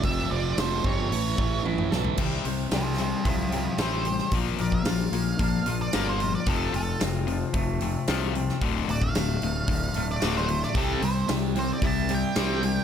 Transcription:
0.03 fingered electric bass F1, clean electric guitar F2, distorted electric guitar F2 C3 F3, lead electric guitar E5, kick, open hi-hat
0.30 fingered electric bass F1, distorted electric guitar F2 C3 F3, clean electric guitar C3, lead electric guitar D5
0.57 fingered electric bass F1, distorted electric guitar F2 C3 F3, clean electric guitar F3, lead electric guitar C5, snare, open hi-hat
0.84 fingered electric bass G1, distorted electric guitar F2 C3 F3, clean electric guitar C4, lead electric guitar C#5, kick
1.12 fingered electric bass A1, clean electric guitar A2, distorted electric guitar A2 E3 A3, open hi-hat
1.38 fingered electric bass A1, distorted electric guitar A2 E3 A3, clean electric guitar A3, kick
1.65 fingered electric bass A1, distorted electric guitar A2 E3 A3, clean electric guitar E4, high tom
1.78 mid tom
1.91 fingered electric bass B1, distorted electric guitar A2 E3 A3, clean electric guitar A4, snare
2.04 floor tom
2.17 fingered electric bass C2, clean electric guitar C3, distorted electric guitar C3 G3 C4, kick, crash
2.45 fingered electric bass C2, distorted electric guitar C3 G3, clean electric guitar C5, open hi-hat
2.71 fingered electric bass C2, distorted electric guitar C3 G3, clean electric guitar G4, snare, open hi-hat
2.75 lead electric guitar E4 C5
2.98 distorted electric guitar C3 G3, clean electric guitar C4, open hi-hat
3.02 lead electric guitar E4 C5
3.25 fingered electric bass C2, distorted electric guitar C3 G3, lead electric guitar C4, clean electric guitar E4, kick, open hi-hat
3.29 lead electric guitar A4
3.52 distorted electric guitar C3 G3, lead electric guitar C4, clean electric guitar G4, open hi-hat
3.56 lead electric guitar A4
3.78 fingered electric bass A1, distorted electric guitar C3 G3 C4, clean electric guitar C5, snare, open hi-hat
3.82 lead electric guitar C5
4.05 distorted electric guitar C3 G3, clean electric guitar G4, open hi-hat
4.19 snare
4.31 fingered electric bass A#1, clean electric guitar A#2, distorted electric guitar A#2 F3 A#3, kick, open hi-hat
4.58 fingered electric bass A#1, distorted electric guitar A#2 F3, clean electric guitar A#4, lead electric guitar D5, open hi-hat
4.72 lead electric guitar F5, kick
4.85 fingered electric bass A#1, distorted electric guitar A#2 F3, clean electric guitar F4, snare, open hi-hat
5.12 fingered electric bass A#1, distorted electric guitar A#2 F3, clean electric guitar A#3, open hi-hat
5.39 fingered electric bass A#1, distorted electric guitar A#2 F3, clean electric guitar D4, kick, open hi-hat
5.66 fingered electric bass A#1, distorted electric guitar A#2 F3, clean electric guitar F4, open hi-hat
5.82 lead electric guitar D5
5.93 fingered electric bass G1, distorted electric guitar A#2 F3 A#3, clean electric guitar A#4, snare, open hi-hat
6.09 lead electric guitar C5
6.20 distorted electric guitar A#2 F3, clean electric guitar F4, open hi-hat
6.35 lead electric guitar D5
6.46 fingered electric bass F1, distorted electric guitar F2 C3 F3, clean electric guitar F2, lead electric guitar A4, kick, open hi-hat
6.74 fingered electric bass F1, distorted electric guitar F2 C3, clean electric guitar F4, lead electric guitar A4, open hi-hat
7.00 fingered electric bass F1, distorted electric guitar F2 C3, clean electric guitar C4, snare, open hi-hat
7.27 distorted electric guitar F2 C3, clean electric guitar F3, open hi-hat
7.53 fingered electric bass F1, distorted electric guitar F2 C3, clean electric guitar A3, kick, open hi-hat
7.80 distorted electric guitar F2 C3, clean electric guitar C4, open hi-hat
8.07 fingered electric bass C2, distorted electric guitar F2 C3 F3, clean electric guitar F4, snare, open hi-hat
8.34 distorted electric guitar F2 C3, clean electric guitar C4, open hi-hat
8.49 snare
8.61 fingered electric bass D1, clean electric guitar D2, distorted electric guitar D2 A2 D3, kick, open hi-hat
8.88 fingered electric bass D1, distorted electric guitar D2 A2, clean electric guitar F#4, lead electric guitar D5, open hi-hat
9.02 lead electric guitar F5, kick
9.14 fingered electric bass D1, distorted electric guitar D2 A2, clean electric guitar A3, snare, open hi-hat
9.41 fingered electric bass D1, distorted electric guitar D2 A2, clean electric guitar A2, open hi-hat
9.67 fingered electric bass D1, distorted electric guitar D2 A2, clean electric guitar D3, kick, open hi-hat
9.94 fingered electric bass D1, distorted electric guitar D2 A2, clean electric guitar A3, open hi-hat
10.11 lead electric guitar D5
10.20 fingered electric bass D1, distorted electric guitar D2 A2 D3, clean electric guitar F#4, snare, open hi-hat
10.36 lead electric guitar C5, snare
10.48 distorted electric guitar D2 A2, clean electric guitar A3, open hi-hat
10.63 lead electric guitar D5, snare
10.74 fingered electric bass C2, distorted electric guitar C3 G3 C4, clean electric guitar C3, lead electric guitar A4, kick, open hi-hat
11.02 fingered electric bass C2, distorted electric guitar C3 G3, clean electric guitar C5, lead electric guitar C5, open hi-hat
11.28 fingered electric bass C2, distorted electric guitar C3 G3, clean electric guitar G4, snare, open hi-hat
11.55 distorted electric guitar C3 G3, clean electric guitar C4, lead electric guitar C5, open hi-hat
11.73 lead electric guitar D5
11.82 fingered electric bass C2, distorted electric guitar C3 G3, clean electric guitar E4, kick, open hi-hat
11.87 lead electric guitar A5
12.09 distorted electric guitar C3 G3, clean electric guitar G4, open hi-hat
12.15 lead electric guitar G5
12.35 fingered electric bass C2, distorted electric guitar C3 G3 C4, clean electric guitar C5, snare, open hi-hat
12.63 distorted electric guitar C3 G3, clean electric guitar G4, open hi-hat

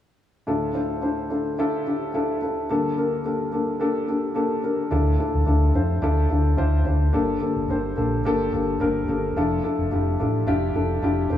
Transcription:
0.47 upright piano D2 A2 D4 E4 F4 A4
0.74 upright piano D4 E4 F4 C5
1.02 upright piano D4 E4 F4 C5
1.30 upright piano D4 E4 F4 A4
1.59 upright piano D4 E4 F4 A4
1.86 upright piano D4 E4 F4 G4
2.14 upright piano D4 E4 F4 A4
2.42 upright piano D4 E4 F4 A4
2.69 upright piano G2 D3 A#3 D4 G4 A4
2.97 upright piano A#3 D4 G4 A#4
3.25 upright piano A#3 D4 G4 A4
3.52 upright piano A#3 D4 G4 A4
3.80 upright piano A#3 D4 G4 A4
4.07 upright piano A#3 D4 G4 A4
4.35 upright piano A#3 D4 G4 A4
4.63 upright piano A#3 D4 G4 A#4
4.91 fingered electric bass D2, upright piano A2 D4 E4 F4 A4
5.19 upright piano D4 E4 F4 A4
5.34 fingered electric bass D2
5.46 fingered electric bass D2, upright piano D4 E4 F4 A4
5.74 fingered electric bass F2, upright piano D4 E4 F4 C5
6.02 fingered electric bass D2, upright piano D4 E4 F4 A4
6.30 fingered electric bass D2, upright piano D4 E4 F4 A4
6.57 fingered electric bass D2, upright piano D4 E4 F4 C5
6.85 fingered electric bass D2, upright piano D4 E4 F4 C5
7.13 fingered electric bass G1, upright piano G2 D3 A#3 D4 G4 A4
7.41 upright piano A#3 D4 G4 A4
7.56 fingered electric bass G1
7.69 fingered electric bass G1, upright piano A#3 D4 G4 C5
7.96 fingered electric bass A#1, upright piano A#3 D4 G4 A4
8.25 fingered electric bass G1, upright piano A#3 D4 G4 A4
8.53 fingered electric bass G1, upright piano A#3 D4 G4 A4
8.80 fingered electric bass G1, upright piano A#3 D4 G4 A#4
9.08 fingered electric bass G1, upright piano A#3 D4 G4 A4
9.36 fingered electric bass F1, upright piano F3 D4 E4 F4 A4
9.63 upright piano D4 E4 F4 A4
9.78 fingered electric bass F1
9.91 fingered electric bass F1, upright piano D4 E4 F4 G4
10.20 fingered electric bass A1, upright piano D4 E4 F4 A4
10.47 fingered electric bass F1, upright piano D4 E4 F4 G4
10.75 fingered electric bass F1, upright piano D4 E4 F4 A4
11.02 fingered electric bass F1, upright piano D4 E4 F4 G4
11.30 fingered electric bass F1, upright piano C3 C4 F4 A4 C5

